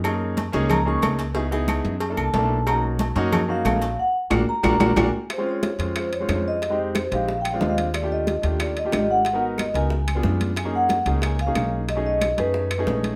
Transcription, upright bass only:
X:1
M:4/4
L:1/8
Q:1/4=182
K:Bbphr
V:1 name="Upright bass" clef=bass
G,,3 D,,3 D,,2- | D,,3 G,,2 =C,, _C,,2- | C,,3 ^F,,3 ^A,,,2 | z2 B,,, z B,,, B,,, B,,, z |
[K:Db] z3 F,,3 F,,2- | F,,3 B,,,3 E,,2- | E,,3 E,,3 A,,,2- | A,,,3 D,,3 G,,2- |
G,,3 D,,3 _C,,2- | _C,,3 ^F,,3 B,,,2 |]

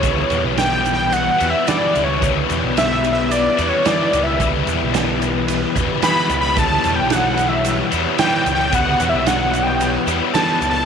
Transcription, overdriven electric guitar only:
X:1
M:4/4
L:1/8
Q:1/4=111
K:Edor
V:1 name="Overdriven electric guitar" clef=bass
[E,,B,,E,G,B,E]4- [E,,B,,E,G,B,E] [E,,B,,E,G,B,E] [E,,B,,E,G,B,E]2 | [E,,B,,E,G,B,E]4- [E,,B,,E,G,B,E] [E,,B,,E,G,B,E] [E,,B,,E,G,B,E]2 | [E,,B,,E,G,B,E]4- [E,,B,,E,G,B,E] [E,,B,,E,G,B,E] [E,,B,,E,G,B,E]2 | [E,,B,,E,G,B,E]4- [E,,B,,E,G,B,E] [E,,B,,E,G,B,E] [E,,B,,E,G,B,E]2 |
[E,,B,,E,G,B,E]4- [E,,B,,E,G,B,E] [E,,B,,E,G,B,E] [E,,B,,E,G,B,E]2 |]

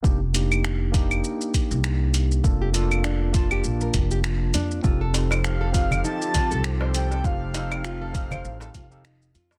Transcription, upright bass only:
X:1
M:4/4
L:1/16
Q:"Swing 16ths" 1/4=100
K:Fmix
V:1 name="Upright bass" clef=bass
F,,,8 z3 C,,4- C,, | F,,,8 B,,, z F,,,4 F,, z | F,,,8 z3 C,,4- C,, | F,,,8 A,,, z F,,,4 F,, z |]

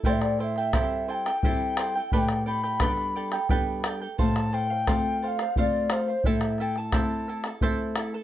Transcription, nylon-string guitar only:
X:1
M:3/4
L:1/8
Q:1/4=87
K:Am
V:1 name="Nylon-string guitar"
A,,2 [G,CE]2 [G,CE]2 | A,,2 [G,B,D]2 [G,B,D]2 | A,,2 [A,CF]2 [A,CF]2 | A,,2 [A,CE]2 [A,CE]2 |]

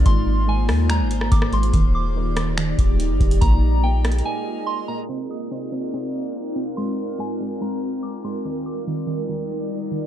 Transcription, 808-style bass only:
X:1
M:4/4
L:1/16
Q:1/4=143
K:Cm
V:1 name="808-style bass" clef=bass
A,,,6 E,,3 A,,,3 A,,,4 | E,,,8- E,,,2 E,,,3 G,,, E,,,2 | B,,,8 z8 | z16 |
z16 | z16 |]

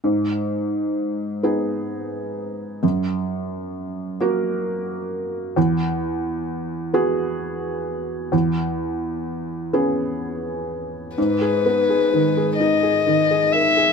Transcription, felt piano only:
X:1
M:6/8
L:1/16
Q:3/8=43
K:G#m
V:1 name="Felt piano"
G,,6 [B,DG]6 | F,,6 [A,FA]6 | E,,6 [B,FG]6 | E,,6 [B,CG]6 |
G,, G B, G D, G D G D, G A G |]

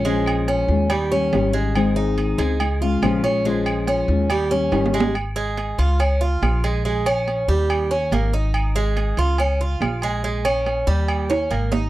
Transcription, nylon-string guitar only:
X:1
M:4/4
L:1/8
Q:1/4=141
K:Dblyd
V:1 name="Nylon-string guitar"
[F,A,DF]3 [A,DF] z [G,DG] [E,G,DG] [G,DG] | [E,A,CEA]3 [CEA] z [A,DF] [D,F,A,DF] [A,DF] | [F,A,DF]3 [A,DF] z [G,DG] [E,G,DG] [G,DG] | z8 |
z8 | z8 | z8 |]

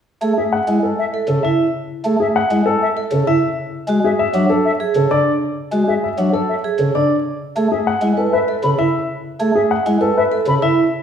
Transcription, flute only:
X:1
M:6/4
L:1/8
Q:1/4=196
K:F#m
V:1 name="Flute"
z2 e z3 e z4 z | z2 e z3 e z4 z | z2 e z3 e z4 z | z2 e z3 e z4 z |
z2 e z3 e z b z3 | z2 e z3 e z b z3 |]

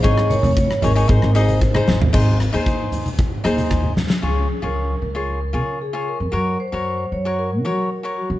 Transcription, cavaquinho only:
X:1
M:4/4
L:1/16
Q:1/4=114
K:Db
V:1 name="Cavaquinho"
[EAd]4 z2 [EAd] [EAd] [EAc]2 [EAe]2 z [EAc]2 z | [EAc]2 z [EAc]4 z3 [EAc]4 z2 | [FAd]2 z [FAd]2 z2 [FAd]2 z [FAd]2 z [FAd]2 z | [GBd]2 z [GBd]2 z2 [GBd]2 z [GBd]2 z [GBd]2 z |]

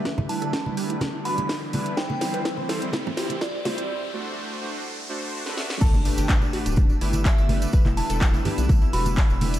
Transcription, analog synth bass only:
X:1
M:4/4
L:1/16
Q:1/4=125
K:G
V:1 name="Analog synth bass" clef=bass
E,,,2 z E,,,2 z2 B,,,2 z E,,,2 z4 | C,,2 z C,,2 z2 G,,,2 z C,,2 z C,,2 z | z16 | G,,,2 z G,,,2 z2 D,,,2 z G,,,2 z G,,,2 z |
E,,,2 z E,,,2 z2 B,,,2 z E,,,2 z E,,,2 z |]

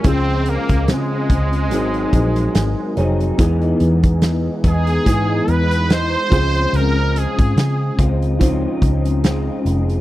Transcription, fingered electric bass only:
X:1
M:4/4
L:1/16
Q:"Swing 16ths" 1/4=72
K:Db
V:1 name="Fingered electric bass" clef=bass
D,,3 D,, D,2 D,,2 A,,,2 B,,,2 A,,, z F,,,2 | =E,,2 E,,4 E,,2 ^G,,2 E,,4 D,,2 | D,,3 A,, D,2 D,,4 D,,4 F,,,2 |]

